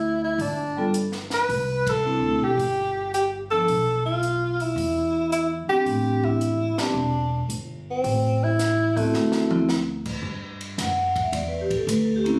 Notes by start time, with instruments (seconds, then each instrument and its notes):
Already playing: upright bass D2, tenor saxophone E4
0.24 tenor saxophone E4
0.38 upright bass G1, tenor saxophone D4, open hi-hat
0.77 vibraphone G3 B3 F4 A4
0.94 closed hi-hat
1.12 snare
1.30 tenor saxophone B4, snare, open hi-hat
1.49 upright bass C2, open hi-hat
1.87 tenor saxophone A4, kick, ride
2.05 vibraphone C4 D4 E4 A4
2.21 upright bass D2
2.39 upright bass B1
2.44 tenor saxophone G4
2.57 upright bass G1, open hi-hat
3.14 tenor saxophone G4, closed hi-hat
3.51 vibraphone F3 B3 D4 A4, tenor saxophone A4
3.68 upright bass B1, open hi-hat
4.06 tenor saxophone F4
4.23 closed hi-hat
4.60 tenor saxophone E4, open hi-hat
4.76 upright bass E2, open hi-hat
5.32 tenor saxophone E4, closed hi-hat
5.68 vibraphone B3 C4 D4 G4, tenor saxophone G4, muted upright bass stroke
5.86 upright bass A1, open hi-hat
6.24 tenor saxophone E4, kick
6.41 closed hi-hat
6.78 vibraphone B3 C4 D4 G4, tenor saxophone D4, muted upright bass stroke, snare, ride
6.94 upright bass E1
7.49 upright bass G1, closed hi-hat
7.91 tenor saxophone C4
8.04 upright bass A1, open hi-hat
8.43 tenor saxophone E4
8.59 snare, closed hi-hat
8.96 tenor saxophone A3, vibraphone B3 C4 E4 F#4, kick, open hi-hat
9.14 upright bass D2, snare
9.32 snare
9.51 vibraphone B3 C4 E4, mid tom
9.69 snare
10.05 kick, crash
10.22 upright bass G2
10.61 ride
10.78 upright bass F#2, vibraphone F#5, snare, hi-hat pedal, ride
11.16 kick, ride
11.23 vibraphone E5
11.32 upright bass E2, vibraphone D5, ride
11.48 vibraphone B4
11.61 vibraphone G4
11.71 kick, ride
11.77 vibraphone A4
11.87 upright bass D2, vibraphone B4, hi-hat pedal, ride
12.04 vibraphone A4
12.16 vibraphone G4
12.24 vibraphone A#3 C4 C#4 E4, ride
12.33 vibraphone F#4